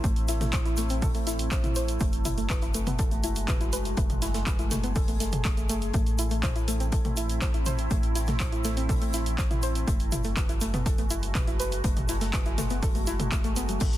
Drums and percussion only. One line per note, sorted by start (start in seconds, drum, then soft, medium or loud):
0.04 kick loud
0.04 closed hi-hat medium
0.04 shaker medium
0.16 closed hi-hat soft
0.16 shaker soft
0.28 snare soft
0.28 closed hi-hat medium
0.28 closed hi-hat loud
0.28 shaker loud
0.40 snare medium
0.40 closed hi-hat soft
0.40 mid tom medium
0.40 shaker soft
0.52 kick loud
0.52 snare loud
0.52 clap loud
0.52 closed hi-hat loud
0.52 closed hi-hat medium
0.52 shaker soft
0.66 closed hi-hat soft
0.66 shaker soft
0.77 snare soft
0.77 closed hi-hat medium
0.77 closed hi-hat loud
0.77 shaker medium
0.89 closed hi-hat soft
0.89 shaker soft
1.02 kick loud
1.02 closed hi-hat medium
1.02 mid tom medium
1.02 open hi-hat medium
1.02 shaker medium
1.15 closed hi-hat soft
1.15 shaker soft
1.27 snare soft
1.27 closed hi-hat medium
1.27 closed hi-hat loud
1.27 shaker medium
1.39 closed hi-hat medium
1.39 shaker soft
1.51 kick loud
1.51 snare loud
1.51 clap loud
1.51 closed hi-hat medium
1.51 shaker medium
1.64 closed hi-hat soft
1.64 mid tom medium
1.64 shaker soft
1.76 closed hi-hat loud
1.76 closed hi-hat medium
1.76 shaker loud
1.88 closed hi-hat soft
1.88 shaker soft
2.00 kick loud
2.00 closed hi-hat medium
2.00 shaker medium
2.13 closed hi-hat soft
2.13 shaker soft
2.25 closed hi-hat loud
2.25 closed hi-hat medium
2.25 mid tom medium
2.25 shaker loud
2.38 closed hi-hat soft
2.38 shaker soft
2.50 kick loud
2.50 snare loud
2.50 clap loud
2.50 closed hi-hat medium
2.50 shaker medium
2.61 closed hi-hat soft
2.61 shaker soft
2.74 closed hi-hat medium
2.74 closed hi-hat loud
2.74 shaker medium
2.87 closed hi-hat soft
2.87 mid tom medium
2.87 shaker soft
2.99 kick loud
2.99 closed hi-hat medium
2.99 shaker medium
3.11 closed hi-hat soft
3.11 shaker soft
3.24 closed hi-hat medium
3.24 closed hi-hat loud
3.24 shaker medium
3.36 closed hi-hat soft
3.36 shaker soft
3.48 kick loud
3.48 snare loud
3.48 clap loud
3.48 closed hi-hat medium
3.48 mid tom medium
3.48 shaker medium
3.61 closed hi-hat soft
3.61 shaker soft
3.72 closed hi-hat medium
3.72 closed hi-hat loud
3.72 shaker loud
3.85 closed hi-hat soft
3.85 shaker soft
3.97 kick loud
3.97 closed hi-hat medium
3.97 shaker medium
4.10 closed hi-hat soft
4.10 mid tom medium
4.10 shaker soft
4.22 snare soft
4.22 closed hi-hat loud
4.22 closed hi-hat medium
4.22 shaker loud
4.34 snare medium
4.34 closed hi-hat soft
4.34 shaker soft
4.46 kick loud
4.46 snare loud
4.46 clap loud
4.46 closed hi-hat medium
4.46 shaker medium
4.59 closed hi-hat soft
4.59 shaker soft
4.70 snare medium
4.70 closed hi-hat loud
4.70 closed hi-hat medium
4.70 mid tom medium
4.70 shaker loud
4.84 closed hi-hat soft
4.84 shaker soft
4.95 kick loud
4.95 closed hi-hat medium
4.95 open hi-hat medium
4.95 shaker medium
5.08 closed hi-hat soft
5.08 shaker soft
5.20 snare medium
5.20 closed hi-hat loud
5.20 closed hi-hat medium
5.20 shaker loud
5.32 closed hi-hat medium
5.32 mid tom medium
5.32 shaker soft
5.44 kick loud
5.44 snare loud
5.44 clap loud
5.44 closed hi-hat medium
5.44 shaker medium
5.57 closed hi-hat soft
5.57 shaker soft
5.69 closed hi-hat medium
5.69 closed hi-hat loud
5.69 shaker loud
5.82 closed hi-hat soft
5.82 shaker soft
5.94 kick loud
5.94 closed hi-hat medium
5.94 shaker medium
6.06 closed hi-hat soft
6.06 shaker soft
6.18 closed hi-hat medium
6.18 closed hi-hat loud
6.18 shaker medium
6.30 closed hi-hat soft
6.30 shaker soft
6.43 kick loud
6.43 snare loud
6.43 clap loud
6.43 closed hi-hat loud
6.43 closed hi-hat medium
6.43 mid tom medium
6.43 shaker medium
6.55 closed hi-hat soft
6.55 shaker soft
6.68 closed hi-hat loud
6.68 closed hi-hat medium
6.68 shaker medium
6.80 closed hi-hat soft
6.80 shaker soft
6.92 kick loud
6.92 closed hi-hat medium
6.92 shaker soft
7.04 closed hi-hat soft
7.04 mid tom medium
7.04 shaker soft
7.16 closed hi-hat medium
7.16 closed hi-hat loud
7.16 shaker loud
7.29 closed hi-hat soft
7.29 shaker soft
7.41 kick loud
7.41 snare loud
7.41 clap loud
7.41 closed hi-hat medium
7.41 shaker medium
7.54 closed hi-hat soft
7.54 shaker soft
7.66 closed hi-hat medium
7.66 closed hi-hat loud
7.66 mid tom medium
7.66 shaker medium
7.78 closed hi-hat soft
7.78 shaker soft
7.91 kick loud
7.91 closed hi-hat medium
7.91 shaker soft
8.03 closed hi-hat soft
8.03 shaker soft
8.15 snare soft
8.15 closed hi-hat medium
8.15 closed hi-hat loud
8.15 shaker medium
8.26 snare medium
8.26 closed hi-hat soft
8.26 mid tom loud
8.26 shaker soft
8.40 kick loud
8.40 snare loud
8.40 clap loud
8.40 closed hi-hat medium
8.40 shaker soft
8.52 closed hi-hat soft
8.52 shaker soft
8.64 snare soft
8.64 closed hi-hat medium
8.64 closed hi-hat loud
8.64 shaker loud
8.77 closed hi-hat soft
8.77 shaker soft
8.89 kick loud
8.89 closed hi-hat medium
8.89 mid tom loud
8.89 open hi-hat medium
8.89 shaker soft
9.02 closed hi-hat soft
9.02 shaker soft
9.14 snare soft
9.14 closed hi-hat loud
9.14 closed hi-hat medium
9.14 shaker medium
9.26 closed hi-hat medium
9.26 shaker soft
9.38 kick loud
9.38 snare loud
9.38 clap loud
9.38 closed hi-hat medium
9.38 shaker soft
9.51 closed hi-hat soft
9.51 mid tom loud
9.51 shaker soft
9.62 closed hi-hat medium
9.62 closed hi-hat loud
9.62 shaker medium
9.75 closed hi-hat soft
9.75 shaker soft
9.88 kick loud
9.88 closed hi-hat medium
9.88 shaker medium
10.00 closed hi-hat soft
10.00 shaker soft
10.12 closed hi-hat medium
10.12 closed hi-hat loud
10.12 mid tom loud
10.12 shaker medium
10.24 closed hi-hat soft
10.24 shaker soft
10.37 kick loud
10.37 snare loud
10.37 clap loud
10.37 closed hi-hat loud
10.37 closed hi-hat medium
10.37 shaker soft
10.49 closed hi-hat soft
10.49 shaker soft
10.61 closed hi-hat loud
10.61 closed hi-hat medium
10.61 shaker medium
10.74 closed hi-hat soft
10.74 mid tom loud
10.74 shaker soft
10.86 kick loud
10.86 closed hi-hat medium
10.86 shaker soft
10.98 closed hi-hat soft
10.98 shaker soft
11.10 closed hi-hat loud
11.10 shaker medium
11.23 closed hi-hat soft
11.23 shaker soft
11.35 kick loud
11.35 snare loud
11.35 clap loud
11.35 closed hi-hat medium
11.35 mid tom loud
11.35 shaker medium
11.47 closed hi-hat medium
11.47 shaker soft
11.59 closed hi-hat medium
11.59 closed hi-hat loud
11.59 shaker medium
11.72 closed hi-hat soft
11.72 shaker soft
11.84 kick loud
11.84 closed hi-hat loud
11.84 closed hi-hat medium
11.84 shaker medium
11.96 closed hi-hat soft
11.96 mid tom loud
11.96 shaker soft
12.08 snare soft
12.08 closed hi-hat loud
12.08 closed hi-hat medium
12.08 shaker medium
12.21 snare medium
12.21 closed hi-hat soft
12.21 shaker soft
12.33 kick loud
12.33 snare loud
12.33 clap loud
12.33 closed hi-hat medium
12.33 shaker soft
12.45 closed hi-hat soft
12.45 shaker soft
12.58 snare medium
12.58 closed hi-hat medium
12.58 closed hi-hat loud
12.58 mid tom medium
12.58 shaker medium
12.70 closed hi-hat soft
12.70 shaker soft
12.83 kick loud
12.83 closed hi-hat medium
12.83 open hi-hat medium
12.83 shaker medium
12.95 closed hi-hat soft
12.95 shaker soft
13.07 snare soft
13.07 closed hi-hat medium
13.07 closed hi-hat loud
13.07 shaker medium
13.20 closed hi-hat medium
13.20 mid tom medium
13.20 shaker soft
13.31 kick loud
13.31 snare loud
13.31 clap loud
13.31 closed hi-hat medium
13.31 shaker medium
13.44 closed hi-hat soft
13.44 shaker soft
13.56 closed hi-hat loud
13.56 closed hi-hat medium
13.56 shaker medium
13.69 closed hi-hat soft
13.69 shaker soft
13.80 kick loud
13.80 closed hi-hat medium
13.80 crash medium
13.80 shaker soft
13.93 closed hi-hat soft
13.93 shaker soft